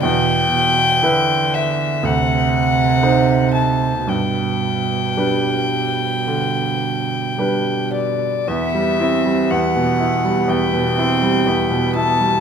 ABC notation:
X:1
M:4/4
L:1/16
Q:1/4=59
K:G
V:1 name="Violin"
g6 e2 f6 a2 | g12- g2 d2 | [K:Em] e4 f4 g6 a2 |]
V:2 name="Cello"
B,,2 B,,2 D,4 C,8 | B,,16 | [K:Em] B,2 C2 B,4 B,2 C2 B,4 |]
V:3 name="Grand piano" clef=bass
E,,4 [EB]4 D,,4 [_Ec]4 | G,,4 [G,DB]4 D,4 [G,DB]4 | [K:Em] E,, G, E G, E,, B,, E G, E,, B,, E G, E,, B,, E G, |]